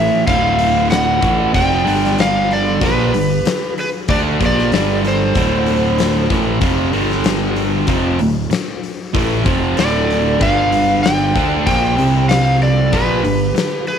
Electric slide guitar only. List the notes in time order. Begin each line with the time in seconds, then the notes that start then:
Already playing: E5
0.27 F5
0.91 F#5
1.55 G5
2.21 F5
2.53 D5
2.84 B4
3.80 B4
4.10 D5
4.46 D5
5.08 C5
9.80 D5
10.42 F5
11.03 G5
11.67 G5
12.29 F5
12.63 D5
12.93 B4
13.88 B4